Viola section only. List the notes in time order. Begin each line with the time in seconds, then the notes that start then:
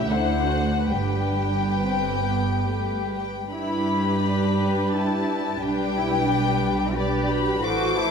0.06 A3 D4
0.91 G3 D4
1.79 C4
2.24 B3
2.67 A3
3.10 G3
3.51 G3 D4
5.60 G3 D4
6.97 G3 D4
7.30 F#3
7.62 E3 E4